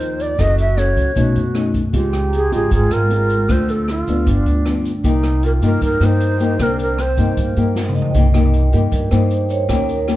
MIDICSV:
0, 0, Header, 1, 7, 480
1, 0, Start_track
1, 0, Key_signature, -3, "minor"
1, 0, Tempo, 387847
1, 481, Time_signature, 4, 2, 24, 8
1, 12579, End_track
2, 0, Start_track
2, 0, Title_t, "Vibraphone"
2, 0, Program_c, 0, 11
2, 2606, Control_c, 0, 64, 127
2, 2632, Note_on_c, 0, 79, 42
2, 2821, Note_on_c, 0, 82, 32
2, 2996, Note_on_c, 0, 84, 33
2, 4301, Note_off_c, 0, 82, 0
2, 4335, Control_c, 0, 64, 0
2, 4495, Note_off_c, 0, 79, 0
2, 4797, Note_off_c, 0, 84, 0
2, 6463, Control_c, 0, 64, 127
2, 8158, Note_on_c, 0, 72, 47
2, 9833, Note_on_c, 0, 75, 47
2, 10017, Note_off_c, 0, 72, 0
2, 10024, Note_on_c, 0, 79, 31
2, 10097, Control_c, 0, 64, 0
2, 10282, Note_off_c, 0, 75, 0
2, 10286, Control_c, 0, 64, 127
2, 10440, Note_off_c, 0, 79, 0
2, 10804, Note_on_c, 0, 70, 55
2, 11248, Note_off_c, 0, 70, 0
2, 11280, Note_on_c, 0, 72, 58
2, 11725, Note_off_c, 0, 72, 0
2, 11767, Note_on_c, 0, 73, 68
2, 12016, Control_c, 0, 64, 0
2, 12209, Note_off_c, 0, 73, 0
2, 12216, Control_c, 0, 64, 127
2, 12240, Note_on_c, 0, 70, 60
2, 12579, Note_off_c, 0, 70, 0
2, 12579, End_track
3, 0, Start_track
3, 0, Title_t, "Shakuhachi"
3, 0, Program_c, 1, 77
3, 0, Note_on_c, 1, 72, 78
3, 267, Note_on_c, 1, 74, 81
3, 286, Note_off_c, 1, 72, 0
3, 505, Note_on_c, 1, 75, 84
3, 524, Note_off_c, 1, 74, 0
3, 733, Note_off_c, 1, 75, 0
3, 740, Note_on_c, 1, 76, 78
3, 981, Note_on_c, 1, 73, 74
3, 1000, Note_off_c, 1, 76, 0
3, 1691, Note_off_c, 1, 73, 0
3, 2908, Note_on_c, 1, 68, 73
3, 3119, Note_off_c, 1, 68, 0
3, 3150, Note_on_c, 1, 68, 69
3, 3359, Note_off_c, 1, 68, 0
3, 3387, Note_on_c, 1, 68, 78
3, 3620, Note_on_c, 1, 70, 86
3, 3639, Note_off_c, 1, 68, 0
3, 4349, Note_on_c, 1, 72, 84
3, 4367, Note_off_c, 1, 70, 0
3, 4586, Note_on_c, 1, 69, 78
3, 4605, Note_off_c, 1, 72, 0
3, 4832, Note_on_c, 1, 64, 74
3, 4851, Note_off_c, 1, 69, 0
3, 4969, Note_off_c, 1, 64, 0
3, 4969, Note_on_c, 1, 65, 74
3, 5536, Note_off_c, 1, 65, 0
3, 6756, Note_on_c, 1, 70, 79
3, 6830, Note_off_c, 1, 70, 0
3, 6991, Note_on_c, 1, 70, 74
3, 7200, Note_off_c, 1, 70, 0
3, 7230, Note_on_c, 1, 70, 83
3, 7487, Note_on_c, 1, 72, 98
3, 7506, Note_off_c, 1, 70, 0
3, 8198, Note_on_c, 1, 70, 83
3, 8217, Note_off_c, 1, 72, 0
3, 8419, Note_off_c, 1, 70, 0
3, 8440, Note_on_c, 1, 70, 75
3, 8680, Note_on_c, 1, 72, 81
3, 8698, Note_off_c, 1, 70, 0
3, 9379, Note_off_c, 1, 72, 0
3, 12579, End_track
4, 0, Start_track
4, 0, Title_t, "Alto flute"
4, 0, Program_c, 2, 73
4, 485, Note_on_c, 2, 66, 83
4, 1394, Note_off_c, 2, 66, 0
4, 1439, Note_on_c, 2, 66, 84
4, 2111, Note_off_c, 2, 66, 0
4, 2380, Note_on_c, 2, 67, 85
4, 3345, Note_on_c, 2, 65, 89
4, 3364, Note_off_c, 2, 67, 0
4, 4316, Note_on_c, 2, 69, 93
4, 4334, Note_off_c, 2, 65, 0
4, 5282, Note_on_c, 2, 62, 92
4, 5301, Note_off_c, 2, 69, 0
4, 5906, Note_off_c, 2, 62, 0
4, 6150, Note_on_c, 2, 62, 62
4, 6253, Note_on_c, 2, 63, 89
4, 6271, Note_off_c, 2, 62, 0
4, 6732, Note_on_c, 2, 65, 83
4, 6751, Note_off_c, 2, 63, 0
4, 7206, Note_on_c, 2, 63, 86
4, 7224, Note_off_c, 2, 65, 0
4, 8153, Note_off_c, 2, 63, 0
4, 8160, Note_on_c, 2, 62, 83
4, 8644, Note_on_c, 2, 60, 78
4, 8662, Note_off_c, 2, 62, 0
4, 9121, Note_off_c, 2, 60, 0
4, 9127, Note_on_c, 2, 58, 78
4, 9606, Note_on_c, 2, 56, 65
4, 9625, Note_off_c, 2, 58, 0
4, 10082, Note_off_c, 2, 56, 0
4, 12579, End_track
5, 0, Start_track
5, 0, Title_t, "Nylon-string guitar"
5, 0, Program_c, 3, 24
5, 0, Note_on_c, 3, 51, 49
5, 0, Note_on_c, 3, 53, 45
5, 0, Note_on_c, 3, 60, 51
5, 0, Note_on_c, 3, 63, 54
5, 438, Note_off_c, 3, 53, 0
5, 442, Note_off_c, 3, 60, 0
5, 444, Note_off_c, 3, 63, 0
5, 451, Note_off_c, 3, 51, 0
5, 474, Note_on_c, 3, 54, 47
5, 474, Note_on_c, 3, 61, 50
5, 482, Note_on_c, 3, 64, 48
5, 487, Note_on_c, 3, 69, 53
5, 786, Note_off_c, 3, 61, 0
5, 791, Note_off_c, 3, 64, 0
5, 793, Note_off_c, 3, 69, 0
5, 952, Note_on_c, 3, 61, 50
5, 957, Note_on_c, 3, 64, 45
5, 965, Note_on_c, 3, 69, 49
5, 1414, Note_off_c, 3, 54, 0
5, 1417, Note_off_c, 3, 61, 0
5, 1420, Note_off_c, 3, 64, 0
5, 1424, Note_off_c, 3, 69, 0
5, 1430, Note_on_c, 3, 47, 49
5, 1433, Note_on_c, 3, 57, 43
5, 1438, Note_on_c, 3, 61, 50
5, 1446, Note_on_c, 3, 63, 51
5, 1745, Note_off_c, 3, 57, 0
5, 1749, Note_off_c, 3, 61, 0
5, 1751, Note_off_c, 3, 63, 0
5, 1908, Note_on_c, 3, 57, 40
5, 1914, Note_on_c, 3, 61, 47
5, 1922, Note_on_c, 3, 63, 50
5, 2237, Note_off_c, 3, 57, 0
5, 2240, Note_off_c, 3, 61, 0
5, 2244, Note_off_c, 3, 63, 0
5, 2372, Note_off_c, 3, 47, 0
5, 2388, Note_on_c, 3, 49, 48
5, 2389, Note_on_c, 3, 56, 46
5, 2397, Note_on_c, 3, 60, 47
5, 2403, Note_on_c, 3, 65, 49
5, 2871, Note_off_c, 3, 56, 0
5, 2876, Note_off_c, 3, 60, 0
5, 2879, Note_off_c, 3, 65, 0
5, 3110, Note_on_c, 3, 56, 53
5, 3116, Note_on_c, 3, 60, 56
5, 3121, Note_on_c, 3, 65, 59
5, 3330, Note_off_c, 3, 49, 0
5, 3357, Note_on_c, 3, 44, 49
5, 3797, Note_off_c, 3, 56, 0
5, 3800, Note_off_c, 3, 60, 0
5, 3803, Note_off_c, 3, 65, 0
5, 3840, Note_on_c, 3, 56, 44
5, 3844, Note_on_c, 3, 60, 48
5, 3851, Note_on_c, 3, 65, 52
5, 4150, Note_off_c, 3, 56, 0
5, 4151, Note_off_c, 3, 60, 0
5, 4155, Note_off_c, 3, 65, 0
5, 4295, Note_off_c, 3, 44, 0
5, 4307, Note_on_c, 3, 50, 47
5, 4312, Note_on_c, 3, 57, 43
5, 4319, Note_on_c, 3, 60, 49
5, 4320, Note_on_c, 3, 65, 52
5, 4794, Note_off_c, 3, 57, 0
5, 4795, Note_off_c, 3, 60, 0
5, 4798, Note_off_c, 3, 65, 0
5, 5048, Note_on_c, 3, 53, 53
5, 5053, Note_on_c, 3, 59, 50
5, 5057, Note_on_c, 3, 62, 57
5, 5250, Note_off_c, 3, 50, 0
5, 5280, Note_on_c, 3, 43, 47
5, 5726, Note_off_c, 3, 53, 0
5, 5727, Note_off_c, 3, 59, 0
5, 5730, Note_off_c, 3, 62, 0
5, 5758, Note_on_c, 3, 53, 47
5, 5766, Note_on_c, 3, 59, 49
5, 5773, Note_on_c, 3, 62, 54
5, 6068, Note_off_c, 3, 53, 0
5, 6073, Note_off_c, 3, 59, 0
5, 6075, Note_off_c, 3, 62, 0
5, 6216, Note_off_c, 3, 43, 0
5, 6233, Note_on_c, 3, 48, 52
5, 6237, Note_on_c, 3, 58, 47
5, 6240, Note_on_c, 3, 63, 52
5, 6249, Note_on_c, 3, 67, 53
5, 6918, Note_off_c, 3, 58, 0
5, 6922, Note_off_c, 3, 63, 0
5, 6924, Note_off_c, 3, 67, 0
5, 6958, Note_on_c, 3, 58, 55
5, 6963, Note_on_c, 3, 63, 50
5, 6971, Note_on_c, 3, 67, 56
5, 7173, Note_off_c, 3, 48, 0
5, 7195, Note_on_c, 3, 43, 51
5, 7401, Note_off_c, 3, 58, 0
5, 7403, Note_off_c, 3, 63, 0
5, 7406, Note_off_c, 3, 67, 0
5, 7445, Note_on_c, 3, 58, 47
5, 7445, Note_on_c, 3, 63, 53
5, 7452, Note_on_c, 3, 67, 59
5, 7884, Note_off_c, 3, 58, 0
5, 7884, Note_off_c, 3, 63, 0
5, 7888, Note_off_c, 3, 67, 0
5, 7918, Note_on_c, 3, 58, 50
5, 7924, Note_on_c, 3, 63, 52
5, 7931, Note_on_c, 3, 67, 61
5, 8120, Note_off_c, 3, 58, 0
5, 8123, Note_off_c, 3, 63, 0
5, 8127, Note_off_c, 3, 67, 0
5, 8133, Note_off_c, 3, 43, 0
5, 8158, Note_on_c, 3, 48, 49
5, 8160, Note_on_c, 3, 58, 45
5, 8169, Note_on_c, 3, 67, 52
5, 8635, Note_off_c, 3, 58, 0
5, 8642, Note_off_c, 3, 67, 0
5, 8880, Note_on_c, 3, 58, 50
5, 8885, Note_on_c, 3, 63, 51
5, 8893, Note_on_c, 3, 67, 50
5, 9095, Note_off_c, 3, 48, 0
5, 9321, Note_off_c, 3, 58, 0
5, 9325, Note_off_c, 3, 63, 0
5, 9326, Note_off_c, 3, 67, 0
5, 9365, Note_on_c, 3, 58, 49
5, 9373, Note_on_c, 3, 63, 46
5, 9378, Note_on_c, 3, 67, 53
5, 10045, Note_off_c, 3, 58, 0
5, 10047, Note_off_c, 3, 63, 0
5, 10047, Note_off_c, 3, 67, 0
5, 10078, Note_on_c, 3, 48, 49
5, 10085, Note_on_c, 3, 58, 47
5, 10085, Note_on_c, 3, 63, 50
5, 10090, Note_on_c, 3, 67, 53
5, 10221, Note_off_c, 3, 58, 0
5, 10223, Note_off_c, 3, 63, 0
5, 10226, Note_off_c, 3, 67, 0
5, 10317, Note_on_c, 3, 58, 55
5, 10324, Note_on_c, 3, 63, 56
5, 10332, Note_on_c, 3, 67, 61
5, 10759, Note_off_c, 3, 58, 0
5, 10763, Note_off_c, 3, 63, 0
5, 10767, Note_off_c, 3, 67, 0
5, 10797, Note_on_c, 3, 58, 50
5, 10806, Note_on_c, 3, 63, 51
5, 10812, Note_on_c, 3, 67, 62
5, 11015, Note_off_c, 3, 48, 0
5, 11032, Note_on_c, 3, 43, 51
5, 11239, Note_off_c, 3, 58, 0
5, 11244, Note_off_c, 3, 63, 0
5, 11245, Note_off_c, 3, 67, 0
5, 11277, Note_on_c, 3, 58, 55
5, 11283, Note_on_c, 3, 63, 49
5, 11289, Note_on_c, 3, 67, 55
5, 11959, Note_off_c, 3, 58, 0
5, 11962, Note_off_c, 3, 63, 0
5, 11963, Note_off_c, 3, 67, 0
5, 11971, Note_off_c, 3, 43, 0
5, 11984, Note_on_c, 3, 51, 52
5, 11985, Note_on_c, 3, 58, 50
5, 11990, Note_on_c, 3, 61, 51
5, 11994, Note_on_c, 3, 67, 57
5, 12300, Note_off_c, 3, 58, 0
5, 12303, Note_off_c, 3, 61, 0
5, 12304, Note_off_c, 3, 67, 0
5, 12467, Note_on_c, 3, 58, 52
5, 12473, Note_on_c, 3, 61, 51
5, 12479, Note_on_c, 3, 67, 55
5, 12579, Note_off_c, 3, 51, 0
5, 12579, Note_off_c, 3, 58, 0
5, 12579, Note_off_c, 3, 61, 0
5, 12579, Note_off_c, 3, 67, 0
5, 12579, End_track
6, 0, Start_track
6, 0, Title_t, "Upright bass"
6, 0, Program_c, 4, 32
6, 0, Note_on_c, 4, 39, 70
6, 432, Note_off_c, 4, 39, 0
6, 477, Note_on_c, 4, 30, 76
6, 1150, Note_off_c, 4, 30, 0
6, 1197, Note_on_c, 4, 37, 68
6, 1422, Note_off_c, 4, 37, 0
6, 1441, Note_on_c, 4, 35, 76
6, 1664, Note_off_c, 4, 35, 0
6, 1679, Note_on_c, 4, 42, 75
6, 2350, Note_off_c, 4, 42, 0
6, 2397, Note_on_c, 4, 37, 69
6, 3069, Note_off_c, 4, 37, 0
6, 3124, Note_on_c, 4, 32, 66
6, 3346, Note_off_c, 4, 32, 0
6, 3357, Note_on_c, 4, 32, 75
6, 3582, Note_off_c, 4, 32, 0
6, 3605, Note_on_c, 4, 32, 75
6, 4273, Note_off_c, 4, 32, 0
6, 4319, Note_on_c, 4, 38, 74
6, 4990, Note_off_c, 4, 38, 0
6, 5045, Note_on_c, 4, 38, 71
6, 5266, Note_off_c, 4, 38, 0
6, 5284, Note_on_c, 4, 31, 72
6, 5505, Note_off_c, 4, 31, 0
6, 5518, Note_on_c, 4, 38, 76
6, 6190, Note_off_c, 4, 38, 0
6, 6240, Note_on_c, 4, 36, 78
6, 6911, Note_off_c, 4, 36, 0
6, 6953, Note_on_c, 4, 43, 72
6, 7180, Note_off_c, 4, 43, 0
6, 7198, Note_on_c, 4, 43, 73
6, 7417, Note_off_c, 4, 43, 0
6, 7424, Note_on_c, 4, 43, 73
6, 8103, Note_off_c, 4, 43, 0
6, 8162, Note_on_c, 4, 36, 79
6, 8831, Note_off_c, 4, 36, 0
6, 8882, Note_on_c, 4, 43, 67
6, 9104, Note_off_c, 4, 43, 0
6, 9124, Note_on_c, 4, 43, 74
6, 9345, Note_off_c, 4, 43, 0
6, 9364, Note_on_c, 4, 43, 70
6, 10032, Note_off_c, 4, 43, 0
6, 10086, Note_on_c, 4, 36, 77
6, 10753, Note_off_c, 4, 36, 0
6, 10806, Note_on_c, 4, 43, 71
6, 11026, Note_off_c, 4, 43, 0
6, 11041, Note_on_c, 4, 43, 77
6, 11263, Note_off_c, 4, 43, 0
6, 11282, Note_on_c, 4, 43, 76
6, 11950, Note_off_c, 4, 43, 0
6, 11999, Note_on_c, 4, 39, 81
6, 12579, Note_off_c, 4, 39, 0
6, 12579, End_track
7, 0, Start_track
7, 0, Title_t, "Drums"
7, 1, Note_on_c, 9, 42, 39
7, 125, Note_off_c, 9, 42, 0
7, 243, Note_on_c, 9, 42, 36
7, 246, Note_on_c, 9, 82, 54
7, 367, Note_off_c, 9, 42, 0
7, 370, Note_off_c, 9, 82, 0
7, 479, Note_on_c, 9, 36, 48
7, 479, Note_on_c, 9, 37, 53
7, 479, Note_on_c, 9, 42, 50
7, 480, Note_on_c, 9, 82, 53
7, 603, Note_off_c, 9, 36, 0
7, 603, Note_off_c, 9, 37, 0
7, 603, Note_off_c, 9, 42, 0
7, 604, Note_off_c, 9, 82, 0
7, 716, Note_on_c, 9, 42, 37
7, 723, Note_on_c, 9, 82, 22
7, 840, Note_off_c, 9, 42, 0
7, 847, Note_off_c, 9, 82, 0
7, 961, Note_on_c, 9, 37, 53
7, 961, Note_on_c, 9, 42, 39
7, 1084, Note_off_c, 9, 37, 0
7, 1084, Note_off_c, 9, 42, 0
7, 1199, Note_on_c, 9, 36, 49
7, 1203, Note_on_c, 9, 42, 37
7, 1209, Note_on_c, 9, 82, 53
7, 1323, Note_off_c, 9, 36, 0
7, 1326, Note_off_c, 9, 42, 0
7, 1332, Note_off_c, 9, 82, 0
7, 1438, Note_on_c, 9, 36, 50
7, 1439, Note_on_c, 9, 42, 44
7, 1440, Note_on_c, 9, 82, 51
7, 1562, Note_off_c, 9, 36, 0
7, 1562, Note_off_c, 9, 42, 0
7, 1564, Note_off_c, 9, 82, 0
7, 1676, Note_on_c, 9, 42, 35
7, 1679, Note_on_c, 9, 82, 22
7, 1800, Note_off_c, 9, 42, 0
7, 1803, Note_off_c, 9, 82, 0
7, 1916, Note_on_c, 9, 37, 51
7, 1916, Note_on_c, 9, 42, 35
7, 2040, Note_off_c, 9, 37, 0
7, 2040, Note_off_c, 9, 42, 0
7, 2155, Note_on_c, 9, 36, 42
7, 2155, Note_on_c, 9, 42, 32
7, 2159, Note_on_c, 9, 82, 53
7, 2279, Note_off_c, 9, 36, 0
7, 2279, Note_off_c, 9, 42, 0
7, 2283, Note_off_c, 9, 82, 0
7, 2393, Note_on_c, 9, 42, 46
7, 2395, Note_on_c, 9, 36, 50
7, 2399, Note_on_c, 9, 82, 52
7, 2516, Note_off_c, 9, 42, 0
7, 2519, Note_off_c, 9, 36, 0
7, 2523, Note_off_c, 9, 82, 0
7, 2639, Note_on_c, 9, 37, 50
7, 2639, Note_on_c, 9, 42, 35
7, 2645, Note_on_c, 9, 82, 22
7, 2763, Note_off_c, 9, 37, 0
7, 2763, Note_off_c, 9, 42, 0
7, 2769, Note_off_c, 9, 82, 0
7, 2880, Note_on_c, 9, 42, 38
7, 3004, Note_off_c, 9, 42, 0
7, 3121, Note_on_c, 9, 42, 42
7, 3127, Note_on_c, 9, 82, 54
7, 3245, Note_off_c, 9, 42, 0
7, 3250, Note_off_c, 9, 82, 0
7, 3355, Note_on_c, 9, 82, 51
7, 3356, Note_on_c, 9, 36, 50
7, 3357, Note_on_c, 9, 42, 48
7, 3478, Note_off_c, 9, 82, 0
7, 3480, Note_off_c, 9, 36, 0
7, 3481, Note_off_c, 9, 42, 0
7, 3597, Note_on_c, 9, 82, 24
7, 3600, Note_on_c, 9, 37, 50
7, 3600, Note_on_c, 9, 42, 40
7, 3720, Note_off_c, 9, 82, 0
7, 3724, Note_off_c, 9, 37, 0
7, 3724, Note_off_c, 9, 42, 0
7, 3840, Note_on_c, 9, 42, 40
7, 3840, Note_on_c, 9, 82, 47
7, 3963, Note_off_c, 9, 42, 0
7, 3964, Note_off_c, 9, 82, 0
7, 4073, Note_on_c, 9, 82, 59
7, 4080, Note_on_c, 9, 42, 36
7, 4197, Note_off_c, 9, 82, 0
7, 4204, Note_off_c, 9, 42, 0
7, 4317, Note_on_c, 9, 82, 52
7, 4319, Note_on_c, 9, 36, 51
7, 4321, Note_on_c, 9, 37, 47
7, 4321, Note_on_c, 9, 42, 47
7, 4440, Note_off_c, 9, 82, 0
7, 4443, Note_off_c, 9, 36, 0
7, 4445, Note_off_c, 9, 37, 0
7, 4445, Note_off_c, 9, 42, 0
7, 4559, Note_on_c, 9, 82, 22
7, 4561, Note_on_c, 9, 42, 41
7, 4683, Note_off_c, 9, 82, 0
7, 4685, Note_off_c, 9, 42, 0
7, 4803, Note_on_c, 9, 37, 55
7, 4803, Note_on_c, 9, 42, 38
7, 4927, Note_off_c, 9, 37, 0
7, 4927, Note_off_c, 9, 42, 0
7, 5041, Note_on_c, 9, 82, 51
7, 5042, Note_on_c, 9, 42, 38
7, 5165, Note_off_c, 9, 82, 0
7, 5166, Note_off_c, 9, 42, 0
7, 5278, Note_on_c, 9, 42, 48
7, 5279, Note_on_c, 9, 82, 55
7, 5280, Note_on_c, 9, 36, 51
7, 5402, Note_off_c, 9, 42, 0
7, 5403, Note_off_c, 9, 36, 0
7, 5403, Note_off_c, 9, 82, 0
7, 5520, Note_on_c, 9, 42, 38
7, 5521, Note_on_c, 9, 82, 25
7, 5643, Note_off_c, 9, 42, 0
7, 5645, Note_off_c, 9, 82, 0
7, 5761, Note_on_c, 9, 37, 52
7, 5761, Note_on_c, 9, 42, 37
7, 5885, Note_off_c, 9, 37, 0
7, 5885, Note_off_c, 9, 42, 0
7, 6002, Note_on_c, 9, 82, 57
7, 6005, Note_on_c, 9, 42, 35
7, 6126, Note_off_c, 9, 82, 0
7, 6129, Note_off_c, 9, 42, 0
7, 6238, Note_on_c, 9, 36, 49
7, 6240, Note_on_c, 9, 42, 49
7, 6246, Note_on_c, 9, 82, 50
7, 6362, Note_off_c, 9, 36, 0
7, 6364, Note_off_c, 9, 42, 0
7, 6370, Note_off_c, 9, 82, 0
7, 6476, Note_on_c, 9, 37, 52
7, 6476, Note_on_c, 9, 42, 36
7, 6477, Note_on_c, 9, 82, 22
7, 6600, Note_off_c, 9, 37, 0
7, 6600, Note_off_c, 9, 42, 0
7, 6601, Note_off_c, 9, 82, 0
7, 6715, Note_on_c, 9, 42, 37
7, 6838, Note_off_c, 9, 42, 0
7, 6957, Note_on_c, 9, 82, 55
7, 6958, Note_on_c, 9, 42, 39
7, 7080, Note_off_c, 9, 82, 0
7, 7082, Note_off_c, 9, 42, 0
7, 7195, Note_on_c, 9, 82, 53
7, 7197, Note_on_c, 9, 36, 48
7, 7197, Note_on_c, 9, 42, 48
7, 7318, Note_off_c, 9, 82, 0
7, 7320, Note_off_c, 9, 36, 0
7, 7320, Note_off_c, 9, 42, 0
7, 7439, Note_on_c, 9, 37, 52
7, 7439, Note_on_c, 9, 42, 37
7, 7441, Note_on_c, 9, 82, 23
7, 7563, Note_off_c, 9, 37, 0
7, 7563, Note_off_c, 9, 42, 0
7, 7565, Note_off_c, 9, 82, 0
7, 7678, Note_on_c, 9, 42, 39
7, 7802, Note_off_c, 9, 42, 0
7, 7917, Note_on_c, 9, 82, 56
7, 7919, Note_on_c, 9, 42, 36
7, 8041, Note_off_c, 9, 82, 0
7, 8043, Note_off_c, 9, 42, 0
7, 8158, Note_on_c, 9, 82, 53
7, 8159, Note_on_c, 9, 36, 49
7, 8159, Note_on_c, 9, 37, 53
7, 8159, Note_on_c, 9, 42, 55
7, 8282, Note_off_c, 9, 36, 0
7, 8282, Note_off_c, 9, 82, 0
7, 8283, Note_off_c, 9, 37, 0
7, 8283, Note_off_c, 9, 42, 0
7, 8396, Note_on_c, 9, 82, 23
7, 8403, Note_on_c, 9, 42, 39
7, 8520, Note_off_c, 9, 82, 0
7, 8527, Note_off_c, 9, 42, 0
7, 8642, Note_on_c, 9, 37, 51
7, 8642, Note_on_c, 9, 42, 41
7, 8766, Note_off_c, 9, 37, 0
7, 8766, Note_off_c, 9, 42, 0
7, 8875, Note_on_c, 9, 82, 53
7, 8880, Note_on_c, 9, 42, 43
7, 8881, Note_on_c, 9, 36, 49
7, 8998, Note_off_c, 9, 82, 0
7, 9003, Note_off_c, 9, 42, 0
7, 9005, Note_off_c, 9, 36, 0
7, 9117, Note_on_c, 9, 82, 53
7, 9120, Note_on_c, 9, 42, 47
7, 9121, Note_on_c, 9, 36, 50
7, 9240, Note_off_c, 9, 82, 0
7, 9244, Note_off_c, 9, 42, 0
7, 9245, Note_off_c, 9, 36, 0
7, 9361, Note_on_c, 9, 82, 24
7, 9363, Note_on_c, 9, 42, 38
7, 9485, Note_off_c, 9, 82, 0
7, 9487, Note_off_c, 9, 42, 0
7, 9600, Note_on_c, 9, 38, 35
7, 9724, Note_off_c, 9, 38, 0
7, 9764, Note_on_c, 9, 47, 39
7, 9842, Note_on_c, 9, 82, 54
7, 9888, Note_off_c, 9, 47, 0
7, 9921, Note_on_c, 9, 43, 52
7, 9966, Note_off_c, 9, 82, 0
7, 10045, Note_off_c, 9, 43, 0
7, 10080, Note_on_c, 9, 42, 48
7, 10082, Note_on_c, 9, 36, 53
7, 10085, Note_on_c, 9, 82, 53
7, 10204, Note_off_c, 9, 42, 0
7, 10206, Note_off_c, 9, 36, 0
7, 10208, Note_off_c, 9, 82, 0
7, 10323, Note_on_c, 9, 37, 56
7, 10323, Note_on_c, 9, 42, 39
7, 10328, Note_on_c, 9, 82, 24
7, 10446, Note_off_c, 9, 37, 0
7, 10446, Note_off_c, 9, 42, 0
7, 10452, Note_off_c, 9, 82, 0
7, 10561, Note_on_c, 9, 42, 37
7, 10684, Note_off_c, 9, 42, 0
7, 10801, Note_on_c, 9, 42, 40
7, 10808, Note_on_c, 9, 82, 57
7, 10925, Note_off_c, 9, 42, 0
7, 10931, Note_off_c, 9, 82, 0
7, 11039, Note_on_c, 9, 42, 53
7, 11040, Note_on_c, 9, 36, 54
7, 11042, Note_on_c, 9, 82, 57
7, 11162, Note_off_c, 9, 42, 0
7, 11164, Note_off_c, 9, 36, 0
7, 11166, Note_off_c, 9, 82, 0
7, 11277, Note_on_c, 9, 37, 53
7, 11277, Note_on_c, 9, 42, 40
7, 11285, Note_on_c, 9, 82, 26
7, 11400, Note_off_c, 9, 37, 0
7, 11400, Note_off_c, 9, 42, 0
7, 11409, Note_off_c, 9, 82, 0
7, 11514, Note_on_c, 9, 82, 51
7, 11518, Note_on_c, 9, 42, 38
7, 11638, Note_off_c, 9, 82, 0
7, 11641, Note_off_c, 9, 42, 0
7, 11753, Note_on_c, 9, 82, 55
7, 11756, Note_on_c, 9, 42, 38
7, 11876, Note_off_c, 9, 82, 0
7, 11880, Note_off_c, 9, 42, 0
7, 11992, Note_on_c, 9, 37, 52
7, 11992, Note_on_c, 9, 42, 55
7, 11996, Note_on_c, 9, 36, 52
7, 11998, Note_on_c, 9, 82, 56
7, 12116, Note_off_c, 9, 37, 0
7, 12116, Note_off_c, 9, 42, 0
7, 12119, Note_off_c, 9, 36, 0
7, 12121, Note_off_c, 9, 82, 0
7, 12236, Note_on_c, 9, 42, 41
7, 12237, Note_on_c, 9, 82, 25
7, 12360, Note_off_c, 9, 42, 0
7, 12361, Note_off_c, 9, 82, 0
7, 12473, Note_on_c, 9, 37, 55
7, 12473, Note_on_c, 9, 42, 40
7, 12579, Note_off_c, 9, 37, 0
7, 12579, Note_off_c, 9, 42, 0
7, 12579, End_track
0, 0, End_of_file